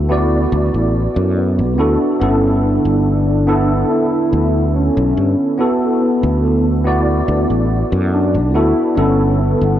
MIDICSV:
0, 0, Header, 1, 4, 480
1, 0, Start_track
1, 0, Tempo, 845070
1, 1258, Time_signature, 4, 2, 24, 8
1, 5564, End_track
2, 0, Start_track
2, 0, Title_t, "Tine electric piano"
2, 0, Program_c, 0, 4
2, 0, Control_c, 0, 64, 127
2, 0, Note_on_c, 0, 59, 72
2, 0, Note_on_c, 0, 64, 68
2, 0, Note_on_c, 0, 66, 68
2, 0, Note_on_c, 0, 69, 82
2, 50, Note_off_c, 0, 59, 0
2, 50, Note_on_c, 0, 59, 81
2, 54, Note_off_c, 0, 64, 0
2, 54, Note_on_c, 0, 64, 77
2, 60, Note_off_c, 0, 66, 0
2, 60, Note_on_c, 0, 66, 75
2, 67, Note_on_c, 0, 74, 88
2, 986, Note_off_c, 0, 59, 0
2, 988, Note_off_c, 0, 64, 0
2, 991, Note_off_c, 0, 66, 0
2, 995, Note_off_c, 0, 74, 0
2, 1012, Note_on_c, 0, 59, 81
2, 1015, Note_on_c, 0, 64, 73
2, 1018, Note_on_c, 0, 66, 75
2, 1019, Note_off_c, 0, 69, 0
2, 1019, Note_on_c, 0, 69, 87
2, 1227, Note_off_c, 0, 59, 0
2, 1229, Note_off_c, 0, 64, 0
2, 1230, Note_off_c, 0, 66, 0
2, 1231, Note_off_c, 0, 69, 0
2, 1249, Note_on_c, 0, 59, 73
2, 1255, Note_on_c, 0, 50, 67
2, 1260, Note_on_c, 0, 64, 69
2, 1264, Control_c, 0, 64, 0
2, 1265, Note_on_c, 0, 69, 81
2, 1361, Control_c, 0, 64, 127
2, 1946, Note_off_c, 0, 59, 0
2, 1949, Note_off_c, 0, 50, 0
2, 1951, Note_off_c, 0, 64, 0
2, 1954, Note_off_c, 0, 69, 0
2, 1972, Note_on_c, 0, 59, 91
2, 1975, Note_on_c, 0, 62, 85
2, 1978, Note_on_c, 0, 64, 84
2, 1980, Note_on_c, 0, 69, 99
2, 2065, Note_off_c, 0, 59, 0
2, 2066, Note_off_c, 0, 62, 0
2, 2068, Note_off_c, 0, 64, 0
2, 2069, Note_off_c, 0, 69, 0
2, 3168, Note_on_c, 0, 59, 77
2, 3174, Note_on_c, 0, 64, 67
2, 3180, Note_on_c, 0, 66, 68
2, 3185, Note_on_c, 0, 69, 83
2, 3186, Control_c, 0, 64, 0
2, 3295, Control_c, 0, 64, 127
2, 3865, Note_off_c, 0, 59, 0
2, 3868, Note_off_c, 0, 64, 0
2, 3871, Note_off_c, 0, 66, 0
2, 3873, Note_off_c, 0, 69, 0
2, 3888, Note_on_c, 0, 59, 80
2, 3893, Note_on_c, 0, 64, 73
2, 3899, Note_on_c, 0, 66, 76
2, 3903, Note_on_c, 0, 74, 90
2, 4825, Note_off_c, 0, 59, 0
2, 4827, Note_off_c, 0, 64, 0
2, 4831, Note_off_c, 0, 66, 0
2, 4832, Note_off_c, 0, 74, 0
2, 4851, Note_on_c, 0, 59, 80
2, 4854, Note_on_c, 0, 64, 72
2, 4855, Note_on_c, 0, 66, 69
2, 4860, Note_on_c, 0, 69, 84
2, 5067, Note_off_c, 0, 59, 0
2, 5068, Note_off_c, 0, 64, 0
2, 5069, Note_off_c, 0, 66, 0
2, 5071, Note_off_c, 0, 69, 0
2, 5085, Note_on_c, 0, 59, 72
2, 5091, Note_on_c, 0, 50, 69
2, 5097, Note_on_c, 0, 64, 67
2, 5102, Note_on_c, 0, 69, 82
2, 5104, Control_c, 0, 64, 0
2, 5205, Control_c, 0, 64, 127
2, 5564, Note_off_c, 0, 50, 0
2, 5564, Note_off_c, 0, 59, 0
2, 5564, Note_off_c, 0, 64, 0
2, 5564, Note_off_c, 0, 69, 0
2, 5564, End_track
3, 0, Start_track
3, 0, Title_t, "Soft synth lead"
3, 0, Program_c, 1, 80
3, 781, Note_on_c, 1, 59, 87
3, 1017, Note_on_c, 1, 62, 96
3, 1026, Note_off_c, 1, 59, 0
3, 1253, Note_on_c, 1, 61, 100
3, 1262, Note_off_c, 1, 62, 0
3, 1493, Note_on_c, 1, 62, 110
3, 1502, Note_off_c, 1, 61, 0
3, 2211, Note_off_c, 1, 62, 0
3, 2214, Note_on_c, 1, 64, 119
3, 2674, Note_off_c, 1, 64, 0
3, 2700, Note_on_c, 1, 61, 102
3, 3181, Note_on_c, 1, 59, 95
3, 3189, Note_off_c, 1, 61, 0
3, 3413, Note_off_c, 1, 59, 0
3, 3416, Note_on_c, 1, 59, 87
3, 3874, Note_off_c, 1, 59, 0
3, 4620, Note_on_c, 1, 62, 103
3, 4842, Note_off_c, 1, 62, 0
3, 4860, Note_on_c, 1, 64, 110
3, 5082, Note_off_c, 1, 64, 0
3, 5095, Note_on_c, 1, 61, 109
3, 5341, Note_on_c, 1, 59, 105
3, 5349, Note_off_c, 1, 61, 0
3, 5564, Note_off_c, 1, 59, 0
3, 5564, End_track
4, 0, Start_track
4, 0, Title_t, "Fretless electric bass"
4, 0, Program_c, 2, 35
4, 0, Note_on_c, 2, 38, 94
4, 254, Note_off_c, 2, 38, 0
4, 296, Note_on_c, 2, 38, 98
4, 392, Note_off_c, 2, 38, 0
4, 421, Note_on_c, 2, 33, 90
4, 605, Note_off_c, 2, 33, 0
4, 660, Note_on_c, 2, 42, 102
4, 901, Note_on_c, 2, 35, 85
4, 910, Note_off_c, 2, 42, 0
4, 1015, Note_off_c, 2, 35, 0
4, 1015, Note_on_c, 2, 38, 97
4, 1111, Note_off_c, 2, 38, 0
4, 1257, Note_on_c, 2, 31, 103
4, 1575, Note_off_c, 2, 31, 0
4, 1619, Note_on_c, 2, 31, 91
4, 2174, Note_off_c, 2, 31, 0
4, 2457, Note_on_c, 2, 38, 82
4, 2775, Note_off_c, 2, 38, 0
4, 2822, Note_on_c, 2, 35, 89
4, 2912, Note_off_c, 2, 35, 0
4, 2938, Note_on_c, 2, 43, 88
4, 3033, Note_off_c, 2, 43, 0
4, 3540, Note_on_c, 2, 38, 94
4, 4095, Note_off_c, 2, 38, 0
4, 4136, Note_on_c, 2, 38, 99
4, 4231, Note_off_c, 2, 38, 0
4, 4260, Note_on_c, 2, 33, 91
4, 4444, Note_off_c, 2, 33, 0
4, 4499, Note_on_c, 2, 42, 99
4, 4739, Note_on_c, 2, 35, 86
4, 4748, Note_off_c, 2, 42, 0
4, 4857, Note_off_c, 2, 35, 0
4, 4857, Note_on_c, 2, 38, 102
4, 4952, Note_off_c, 2, 38, 0
4, 5097, Note_on_c, 2, 31, 102
4, 5415, Note_off_c, 2, 31, 0
4, 5461, Note_on_c, 2, 31, 96
4, 5564, Note_off_c, 2, 31, 0
4, 5564, End_track
0, 0, End_of_file